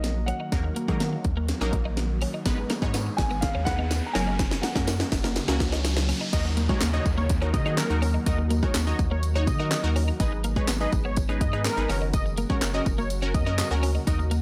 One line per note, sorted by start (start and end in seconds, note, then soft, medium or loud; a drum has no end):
0.00 0.32 A#1 medium
0.00 4.11 D#3 medium
0.00 0.14 F#3 medium
0.00 2.42 F#3 medium
0.00 0.14 A#3 medium
0.00 2.42 A#3 medium
0.00 0.15 D#4 medium
0.00 2.42 F#4 medium
0.00 0.15 A#4 medium
0.00 0.29 D#5 medium
0.00 muted clean electric guitar stroke soft
0.00 snare medium
0.00 closed hi-hat medium
0.00 riser medium
0.26 0.37 C#4 medium
0.26 1.20 F#5 medium
0.26 closed hi-hat medium
0.40 0.49 D#4 medium
0.52 0.71 D#2 loud
0.52 0.70 F#3 medium
0.52 0.70 A#3 medium
0.52 0.70 D#4 medium
0.52 0.70 A#4 medium
0.52 kick loud
0.52 snare medium
0.52 closed hi-hat medium
0.64 muted clean electric guitar stroke soft
0.76 0.86 A#3 medium
0.76 closed hi-hat medium
0.88 1.16 D#3 medium
0.88 1.23 F#3 medium
0.88 0.98 G#3 medium
0.88 1.23 A#3 medium
0.88 1.23 D#4 medium
0.88 1.23 A#4 medium
0.88 kick medium
1.00 1.10 A#3 medium
1.00 snare medium
1.00 closed hi-hat medium
1.13 muted clean electric guitar stroke soft
1.24 1.52 D#2 loud
1.24 kick medium
1.24 closed hi-hat medium
1.37 1.46 A#3 medium
1.48 snare medium
1.48 closed hi-hat medium
1.61 2.26 A#1 medium
1.61 2.02 F#3 loud
1.61 2.02 A#3 medium
1.61 1.70 C#4 medium
1.61 2.02 D#4 medium
1.61 2.02 A#4 loud
1.73 muted clean electric guitar stroke soft
1.73 kick loud
1.73 closed hi-hat medium
1.85 1.95 D#4 medium
1.97 muted clean electric guitar stroke soft
1.97 snare medium
1.97 closed hi-hat medium
2.21 2.31 C#4 medium
2.21 open hi-hat medium
2.34 2.43 D#4 medium
2.46 2.64 G#1 loud
2.46 2.63 G#3 medium
2.46 4.13 G#3 medium
2.46 2.63 B3 medium
2.46 4.13 B3 medium
2.46 2.63 D#4 medium
2.46 4.13 G#4 medium
2.46 2.63 B4 loud
2.46 kick loud
2.46 snare medium
2.46 closed hi-hat loud
2.46 tambourine medium
2.58 muted clean electric guitar stroke soft
2.70 2.79 A#3 medium
2.70 snare medium
2.70 closed hi-hat medium
2.70 tambourine soft
2.82 3.10 G#2 medium
2.82 3.23 G#3 medium
2.82 2.92 G#3 medium
2.82 3.23 B3 medium
2.82 3.23 D#4 medium
2.82 3.23 C#5 loud
2.82 kick medium
2.94 3.04 B3 medium
2.94 snare medium
2.94 closed hi-hat medium
2.94 tambourine medium
3.06 muted clean electric guitar stroke soft
3.06 tambourine soft
3.17 3.46 G#1 loud
3.17 3.43 G#5 loud
3.17 kick medium
3.17 snare medium
3.17 closed hi-hat medium
3.17 tambourine medium
3.30 3.40 B3 medium
3.30 tambourine soft
3.41 3.67 F5 loud
3.41 kick loud
3.41 snare medium
3.41 closed hi-hat medium
3.41 tambourine medium
3.55 4.01 D#2 medium
3.55 3.64 C#4 medium
3.65 4.01 G#3 medium
3.65 4.02 B3 medium
3.65 4.02 D#4 medium
3.65 4.02 B4 medium
3.65 4.09 F#5 loud
3.65 muted clean electric guitar stroke soft
3.65 kick loud
3.65 snare loud
3.65 closed hi-hat medium
3.65 tambourine soft
3.79 3.88 D#4 medium
3.91 muted clean electric guitar stroke soft
3.91 snare loud
3.91 closed hi-hat medium
3.91 tambourine medium
4.06 4.14 A#5 medium
4.13 4.61 F#1 loud
4.13 6.31 C#3 medium
4.13 4.63 F#3 medium
4.13 6.31 F#3 medium
4.13 6.31 A#3 medium
4.13 4.63 A#3 medium
4.13 4.24 C#4 medium
4.13 4.64 C#4 medium
4.13 6.31 F#4 medium
4.13 4.64 A#4 medium
4.13 4.64 G#5 loud
4.13 snare loud
4.13 open hi-hat medium
4.13 tambourine soft
4.27 4.36 D#4 medium
4.27 tambourine soft
4.39 kick loud
4.39 snare loud
4.39 closed hi-hat loud
4.39 tambourine medium
4.51 muted clean electric guitar stroke soft
4.51 snare loud
4.62 4.73 A#3 medium
4.62 5.31 F#5 medium
4.62 snare loud
4.62 closed hi-hat medium
4.62 tambourine soft
4.75 5.03 F#2 medium
4.75 5.10 F#3 medium
4.75 4.85 G#3 medium
4.75 5.10 A#3 medium
4.75 5.10 C#4 medium
4.75 5.11 A#4 medium
4.75 kick medium
4.75 snare loud
4.87 4.97 A#3 medium
4.87 snare loud
4.87 closed hi-hat loud
4.87 tambourine medium
5.00 muted clean electric guitar stroke soft
5.00 snare loud
5.12 5.40 F#1 loud
5.12 kick medium
5.12 snare loud
5.12 closed hi-hat medium
5.12 tambourine medium
5.24 5.33 A#3 medium
5.24 snare loud
5.36 snare loud
5.36 closed hi-hat medium
5.36 tambourine medium
5.48 6.13 C#2 medium
5.48 5.89 F#3 loud
5.48 5.89 A#3 medium
5.48 5.57 C#4 medium
5.48 5.89 C#4 medium
5.48 5.89 F#4 loud
5.48 snare loud
5.60 muted clean electric guitar stroke soft
5.60 kick loud
5.60 snare loud
5.60 closed hi-hat medium
5.60 tambourine soft
5.72 5.82 D#4 medium
5.72 snare loud
5.84 muted clean electric guitar stroke soft
5.84 snare loud
5.84 closed hi-hat medium
5.84 tambourine medium
5.97 snare loud
6.09 6.18 C#4 medium
6.09 open hi-hat medium
6.09 tambourine soft
6.21 6.30 D#4 medium
6.33 6.70 D#2 loud
6.33 10.16 D#3 medium
6.33 10.16 F#3 medium
6.33 10.16 A#3 medium
6.33 6.50 D#4 medium
6.33 6.50 F#4 medium
6.33 10.16 F#4 medium
6.33 6.50 A#4 medium
6.33 6.43 D#5 loud
6.33 kick loud
6.33 closed hi-hat loud
6.33 crash loud
6.33 tambourine medium
6.33 downlifter medium
6.45 muted clean electric guitar stroke soft
6.45 tambourine soft
6.57 6.66 A#3 medium
6.57 closed hi-hat medium
6.57 tambourine soft
6.69 6.78 G#3 medium
6.69 6.81 D#4 medium
6.69 6.81 F#4 medium
6.69 6.81 A#4 medium
6.69 6.79 C#5 medium
6.69 kick medium
6.81 7.00 D#2 loud
6.81 6.91 A#3 medium
6.81 snare loud
6.81 clap loud
6.81 closed hi-hat loud
6.81 tambourine medium
6.93 7.17 D#4 medium
6.93 7.17 F#4 medium
6.93 7.17 C#5 medium
6.93 7.04 D#5 medium
6.93 muted clean electric guitar stroke soft
7.06 7.55 D#2 medium
7.06 kick medium
7.06 closed hi-hat medium
7.06 tambourine medium
7.18 7.27 A#3 medium
7.18 7.28 C#5 medium
7.18 tambourine soft
7.29 kick loud
7.29 closed hi-hat medium
7.29 tambourine medium
7.42 7.51 C#4 medium
7.42 7.53 D#4 medium
7.42 7.53 F#4 medium
7.42 7.54 A#4 medium
7.54 7.82 D#3 loud
7.54 7.74 D#5 medium
7.54 muted clean electric guitar stroke soft
7.54 kick loud
7.54 closed hi-hat medium
7.54 tambourine soft
7.66 7.77 D#4 medium
7.66 7.75 D#4 medium
7.66 7.78 F#4 medium
7.66 7.78 G#4 medium
7.77 8.12 A#4 loud
7.77 muted clean electric guitar stroke soft
7.77 snare medium
7.77 clap loud
7.77 closed hi-hat medium
7.77 tambourine medium
7.90 8.18 D#2 medium
7.90 8.07 D#4 medium
7.90 8.08 F#4 medium
7.90 8.08 A#4 medium
8.02 8.11 C#4 medium
8.02 open hi-hat medium
8.02 tambourine medium
8.14 8.23 D#4 medium
8.26 8.63 D#2 loud
8.26 8.44 D#4 medium
8.26 8.44 F#4 medium
8.26 8.44 A#4 medium
8.26 8.37 D#5 loud
8.26 kick loud
8.26 closed hi-hat loud
8.26 tambourine medium
8.39 muted clean electric guitar stroke soft
8.51 8.60 A#3 medium
8.51 closed hi-hat medium
8.51 tambourine soft
8.63 8.72 G#3 medium
8.63 8.74 D#4 medium
8.63 8.74 F#4 medium
8.63 8.75 A#4 medium
8.63 8.73 C#5 medium
8.63 kick medium
8.74 8.93 D#2 loud
8.74 8.84 A#3 medium
8.74 snare loud
8.74 clap loud
8.74 closed hi-hat loud
8.74 tambourine medium
8.87 9.10 D#4 medium
8.87 9.10 F#4 medium
8.87 9.10 C#5 medium
8.87 8.97 D#5 medium
8.87 muted clean electric guitar stroke soft
8.99 9.49 D#2 medium
8.99 kick loud
8.99 closed hi-hat medium
8.99 tambourine medium
9.11 9.21 A#3 medium
9.11 9.21 C#5 medium
9.23 closed hi-hat medium
9.23 tambourine medium
9.35 9.45 C#4 medium
9.35 9.47 D#4 medium
9.35 9.47 F#4 medium
9.35 9.47 C#5 medium
9.47 9.75 D#3 loud
9.47 9.81 D#5 medium
9.47 muted clean electric guitar stroke soft
9.47 kick loud
9.47 closed hi-hat medium
9.47 tambourine soft
9.59 9.71 D#4 medium
9.59 9.69 D#4 medium
9.59 9.71 F#4 medium
9.59 9.71 A#4 medium
9.71 muted clean electric guitar stroke soft
9.71 snare medium
9.71 clap loud
9.71 closed hi-hat medium
9.71 tambourine medium
9.84 10.11 D#2 medium
9.84 10.01 D#4 medium
9.84 10.01 F#4 medium
9.84 10.01 A#4 medium
9.96 10.05 C#4 medium
9.96 open hi-hat medium
9.96 tambourine soft
10.08 10.17 D#4 medium
10.08 tambourine soft
10.20 10.57 G#1 loud
10.20 11.88 D#3 medium
10.20 11.88 G#3 medium
10.20 11.88 B3 medium
10.20 10.37 D#4 medium
10.20 11.88 G#4 medium
10.20 10.38 G#4 medium
10.20 10.38 B4 medium
10.20 10.30 D#5 loud
10.20 kick loud
10.20 closed hi-hat loud
10.20 tambourine medium
10.32 muted clean electric guitar stroke soft
10.44 10.54 A#3 medium
10.44 closed hi-hat medium
10.44 tambourine soft
10.56 10.66 G#3 medium
10.56 10.68 D#4 medium
10.56 10.68 G#4 medium
10.56 10.68 B4 medium
10.56 10.67 C#5 medium
10.56 kick medium
10.68 10.87 G#1 loud
10.68 10.78 B3 medium
10.68 snare medium
10.68 clap loud
10.68 closed hi-hat loud
10.68 tambourine loud
10.80 11.04 D#4 medium
10.80 11.04 G#4 medium
10.80 11.04 B4 medium
10.80 10.91 D#5 medium
10.80 muted clean electric guitar stroke soft
10.92 11.42 G#1 medium
10.92 kick loud
10.92 closed hi-hat medium
10.92 tambourine medium
11.05 11.14 B3 medium
11.05 11.15 C#5 medium
11.17 kick loud
11.17 closed hi-hat loud
11.17 tambourine medium
11.29 11.38 C#4 medium
11.29 11.40 D#4 medium
11.29 11.41 G#4 medium
11.29 11.41 B4 medium
11.41 11.69 G#2 loud
11.41 11.62 D#5 medium
11.41 muted clean electric guitar stroke soft
11.41 kick loud
11.41 closed hi-hat medium
11.41 tambourine medium
11.53 11.65 D#4 medium
11.53 11.62 D#4 medium
11.53 11.65 G#4 medium
11.53 11.65 B4 medium
11.64 11.99 A#4 loud
11.64 muted clean electric guitar stroke soft
11.64 snare medium
11.64 clap loud
11.64 closed hi-hat medium
11.64 tambourine medium
11.77 11.86 G#1 medium
11.77 11.89 D#4 medium
11.77 11.89 G#4 medium
11.77 11.90 B4 medium
11.89 12.45 F#1 loud
11.89 14.05 C#3 medium
11.89 14.42 F#3 medium
11.89 14.05 A#3 medium
11.89 12.38 C#4 medium
11.89 11.99 C#4 medium
11.89 12.38 F#4 medium
11.89 14.42 F#4 loud
11.89 12.38 A#4 medium
11.89 open hi-hat medium
11.89 tambourine soft
12.02 12.11 D#4 medium
12.13 12.24 D#5 loud
12.13 kick loud
12.13 closed hi-hat loud
12.13 tambourine medium
12.26 muted clean electric guitar stroke soft
12.26 tambourine soft
12.37 12.47 A#3 medium
12.37 closed hi-hat medium
12.37 tambourine soft
12.50 12.59 G#3 medium
12.50 12.61 C#4 medium
12.50 12.61 F#4 medium
12.50 12.62 A#4 medium
12.50 12.60 C#5 medium
12.50 kick medium
12.61 12.80 F#1 loud
12.61 12.71 A#3 medium
12.61 snare medium
12.61 clap loud
12.61 closed hi-hat loud
12.61 tambourine loud
12.74 12.97 C#4 medium
12.74 12.97 F#4 medium
12.74 12.97 A#4 medium
12.74 12.84 D#5 medium
12.74 muted clean electric guitar stroke soft
12.86 13.36 F#1 medium
12.86 kick loud
12.86 closed hi-hat medium
12.86 tambourine medium
12.98 13.08 A#3 medium
12.98 13.09 C#5 medium
12.98 tambourine soft
13.10 closed hi-hat medium
13.10 tambourine medium
13.22 13.34 C#4 medium
13.22 13.32 C#4 medium
13.22 13.34 F#4 medium
13.22 13.34 A#4 medium
13.34 13.62 F#2 loud
13.34 13.69 D#5 medium
13.34 muted clean electric guitar stroke soft
13.34 kick loud
13.34 closed hi-hat medium
13.34 tambourine soft
13.46 13.58 C#4 medium
13.46 13.56 D#4 medium
13.46 13.58 F#4 medium
13.46 13.58 A#4 medium
13.58 muted clean electric guitar stroke soft
13.58 snare medium
13.58 clap loud
13.58 closed hi-hat medium
13.58 tambourine medium
13.71 13.99 D2 medium
13.71 13.88 C#4 medium
13.71 13.88 F#4 medium
13.71 13.88 A#4 medium
13.83 13.92 C#4 medium
13.83 open hi-hat medium
13.83 tambourine medium
13.95 14.04 D#4 medium
13.95 tambourine soft
14.07 14.42 D#2 loud
14.07 14.42 D#3 medium
14.07 14.42 A#3 medium
14.07 14.24 D#4 medium
14.07 14.24 F#4 medium
14.07 14.25 A#4 medium
14.07 14.18 D#5 medium
14.07 kick loud
14.07 closed hi-hat loud
14.07 tambourine medium
14.19 muted clean electric guitar stroke soft
14.19 tambourine soft
14.31 14.40 A#3 medium
14.31 closed hi-hat medium
14.31 tambourine soft